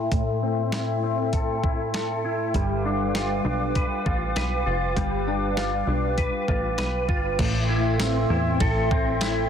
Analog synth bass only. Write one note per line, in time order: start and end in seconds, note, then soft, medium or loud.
2.55 3.41 G1 medium
3.45 3.88 B1 medium
4.06 4.35 A1 medium
4.36 4.65 B1 medium
4.66 4.95 F1 medium
4.97 5.84 G1 loud
5.87 6.31 B1 medium
6.48 6.77 A1 medium
6.79 7.10 B1 medium
7.09 7.38 G1 medium
7.39 8.26 A1 loud
8.30 8.59 E2 medium
8.61 9.47 A1 loud